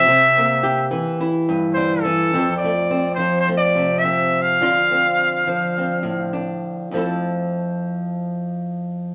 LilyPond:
<<
  \new Staff \with { instrumentName = "Trumpet" } { \time 4/4 \key f \major \tempo 4 = 105 e''4. r4. c''8 a'8~ | a'8 d''4 c''8 c''16 d''8. e''8. f''16~ | f''2. r4 | r1 | }
  \new Staff \with { instrumentName = "Nylon-string guitar" } { \time 4/4 \key f \major << { c'8 bes8 g'4 e'2 | c'8 a8 c'4 a4 c'4 | f'8 c'4. c'4 d'4 | <f a e' a'>1 | } \\ { c4. e4 g,8 d8 e8 | f,4. f4 c4. | d4. f4 a,4. | f,1 | } >> }
>>